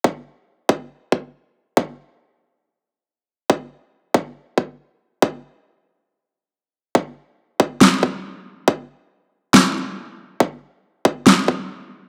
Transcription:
\new DrumStaff \with { instrumentName = "Drums" } \drummode { \time 4/4 \tempo 4 = 139 bd4 r8 bd8 r8 bd8 r4 | bd4 r4 r4 r4 | bd4 r8 bd8 r8 bd8 r4 | bd4 r4 r4 r4 |
bd4 r8 bd8 sn8 bd8 r4 | bd4 r4 sn4 r4 | bd4 r8 bd8 sn8 bd8 r4 | }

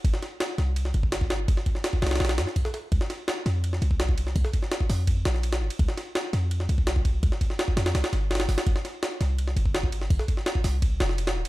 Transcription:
<<
  \new Staff \with { instrumentName = "808-style bass" } { \clef bass \time 4/4 \key c \dorian \tempo 4 = 167 g,,8 r4 c,4 g,,4. | g,,8 r4 c,8 bes,,8 g,8 r4 | c,8 r4 f,4 c,4. | c,8 r4 f,4 bes,,4 g,,8 |
c,8 r4 f,4 c,4. | c,8 r4 f,8 c,8 g,,4 g,,8 | g,,8 r4 c,4 g,,4. | g,,8 r4 c,4 f,,4 d,,8 | }
  \new DrumStaff \with { instrumentName = "Drums" } \drummode { \time 4/4 <bd cymr>16 sn16 <cymr sn>8 <cymr sn>8 <cymr sn>8 cymr16 sn16 cymr16 bd16 <cymr sn>16 bd16 <cymr sn>8 | <bd cymr>16 sn16 <bd cymr>16 sn16 <cymr sn>16 bd16 <cymr sn>32 <cymr sn>32 <cymr sn>32 <cymr sn>32 <cymr sn>32 <cymr sn>32 <cymr sn>16 <cymr sn>16 sn16 <bd cymr>16 sn16 <cymr sn>8 | <bd cymr>16 sn16 <cymr sn>8 <cymr sn>8 <cymr sn>8 cymr16 sn16 cymr16 bd16 <cymr sn>16 bd16 cymr16 sn16 | <bd cymr>16 sn16 <bd cymr>16 sn16 <cymr sn>16 bd16 <hho sn>8 <bd cymr>8 <cymr sn>16 sn16 cymr16 <cymr sn>8 cymr16 |
<bd cymr>16 sn16 <cymr sn>8 <cymr sn>8 <cymr sn>8 cymr16 sn16 cymr16 bd16 <cymr sn>16 bd16 <bd cymr>8 | <bd cymr>16 sn16 <bd cymr>16 sn16 <cymr sn>16 bd16 <cymr sn>16 <cymr sn>16 <cymr sn>16 <cymr sn>16 <cymr sn>8 <cymr sn>32 <cymr sn>32 <cymr sn>16 <hho sn>16 <cymr sn>16 | <bd cymr>16 sn16 <cymr sn>8 <cymr sn>8 <cymr sn>8 cymr16 sn16 cymr16 bd16 <cymr sn>16 bd16 cymr16 sn16 | <bd cymr>16 sn16 <bd cymr>16 sn16 <cymr sn>16 bd16 <hho sn>8 <bd cymr>8 <cymr sn>16 sn16 cymr16 <cymr sn>8 cymr16 | }
>>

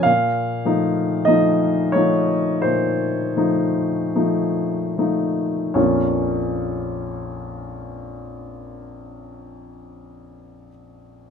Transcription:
<<
  \new Staff \with { instrumentName = "Grand piano" } { \time 4/4 \key bes \minor \tempo 4 = 43 f''4 ees''8 des''8 c''4. r8 | <bes,, f, f bes des' f' des''>1 | }
  \new Staff \with { instrumentName = "Grand piano" } { \time 4/4 \key bes \minor bes,8 <f a ees'>8 <f a ees'>8 <f a ees'>8 bes,8 <f a ees'>8 <f a ees'>8 <f a ees'>8 | r1 | }
>>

